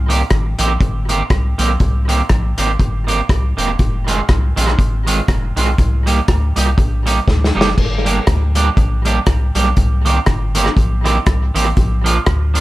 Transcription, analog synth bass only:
Already playing: C2
0.31 G#1
0.59 A#1
0.80 G1
1.30 C2
1.59 B1
1.80 C2
2.30 A#1
2.58 G#1
2.79 G1
3.29 C2
3.57 E1
3.79 F1
4.29 C2
4.57 A#1
4.79 G#1
5.28 F1
5.57 B1
5.79 C2
6.28 D2
6.57 C2
6.78 A#1
7.28 D2
7.56 F#1
7.78 G1
8.27 D2
8.77 A#1
9.27 C2
9.55 B1
9.77 C2
10.27 G1
10.77 A#1
11.27 C2
11.55 A1
11.77 A#1
12.27 D2

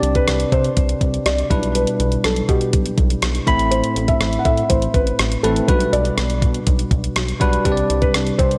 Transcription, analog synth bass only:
0.03 C2
0.28 C2
0.52 C3
0.77 C2
1.01 C2
1.26 C2
1.51 B1
2.00 B1
2.24 B1
2.49 B2
2.73 B1
2.98 B1
3.22 B1
3.47 A1
3.96 A1
4.21 A1
4.45 A2
4.70 A1
4.94 A1
5.19 A1
5.44 A1
5.68 B1
5.93 B1
6.17 B1
6.42 B2
6.67 B1
6.91 B1
7.16 B1
7.41 B1
7.65 C2
7.90 C2
8.14 C2
8.39 C3

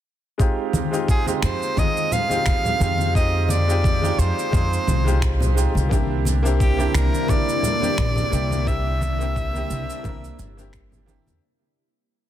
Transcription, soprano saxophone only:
1.11 G#4
1.44 C5
1.79 D#5
2.13 F5
3.16 D#5
3.45 D#5
3.50 D5
4.19 C5
6.61 G4
6.95 A#4
7.30 D5
8.68 E5

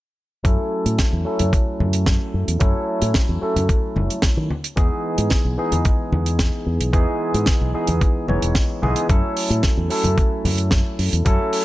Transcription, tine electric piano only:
0.44 F#3 A3 C#4 E4 A4
1.25 F#3 A3 C#4 E4 A4
2.60 F#3 A3 C#4 E4 A4
3.41 F#3 A3 C#4 E4 A4
4.76 E3 G#3 B3 D#4 G#4
5.57 E3 G#3 B3 D#4 G#4
6.92 E3 G#3 B3 D#4 G#4
7.74 E3 G#3 B3 D#4 G#4
8.28 E3 G#3 B3 D#4 C#5
8.82 E3 G#3 B3 D#4 G#4
9.08 F#3 A3 C#4 E4 A4
9.90 F#3 A3 C#4 E4 A4
11.25 F#3 A3 C#4 E4 A4

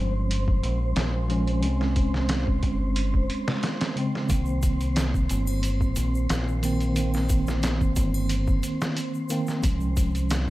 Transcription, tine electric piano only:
Already playing: F3 G#3 C#4
1.28 F3 G#3 C#4
1.60 G#3 C#4
1.66 C4
3.96 C#3 G#3 C4
4.28 D#3 A#3
4.33 C4
6.62 D#3 A#3 C4
6.94 D#3 A#3
7.00 C4
9.29 D#3 A#3 C4
9.61 F3 G#3
9.66 C#4

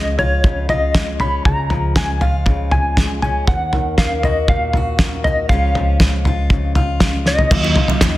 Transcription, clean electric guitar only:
Already playing: D#5
0.19 C#5
0.70 D#5
1.21 B5
1.46 A#5
1.97 G#5
2.22 F5
2.72 G#5
3.22 G#5
3.48 F#5
3.98 F5
4.25 D#5
4.49 F5
5.24 D#5
5.49 F5
7.27 D#5

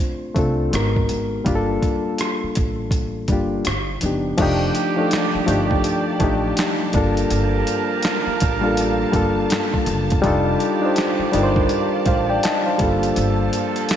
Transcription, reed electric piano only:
Already playing: A3 C4 D4 F4 C5
0.34 A3 C4 D4 F4
0.39 A4
0.71 G#3 B3 D#4 F#4
0.76 A#4
1.45 G3 A#3 D4 F4
1.49 G4
1.55 A4
3.28 G3 A#3 D4 F4
3.33 G4
4.01 F3 B3 D4 D#4
4.06 G4
4.37 F3 A3 D4 D#4
4.42 G4
4.96 F3 A3 D4 D#4
5.01 A4
5.46 F3 A3 D4 D#4
5.51 G4
6.19 F3 A3 D4 D#4
6.24 G4
6.92 G3 A#3 D4 F4
6.97 A4
8.61 G3 A#3 D4 F4
8.66 A4
9.12 G3 A#3 D4 F4
9.16 A4
10.22 G3 D4 D#4 F4
10.27 A4
10.81 G3 D4 D#4 F4
10.86 C5
11.32 G3 D4 D#4 F4
11.37 A#4
11.43 C5
12.07 C5 F5
12.30 D5 G5
12.44 D#5 A5
12.66 C5 F5
12.78 G3 A#3 D4 F4
12.83 A4

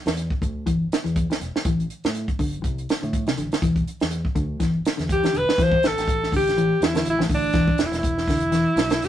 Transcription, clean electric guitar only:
0.42 muted clean electric guitar stroke
0.66 E3
1.04 E3
1.30 muted clean electric guitar stroke
1.40 muted clean electric guitar stroke
1.66 E3
2.39 D3
2.62 muted clean electric guitar stroke
3.02 D3
3.27 C3
3.38 D3
3.62 E3
4.35 D3
4.60 E3
4.97 D3
5.23 E3
5.33 D3
5.59 E3
6.33 D3
6.57 E3
6.94 D3
7.19 E3
7.30 D3
7.54 E3
8.30 D3
8.52 E3

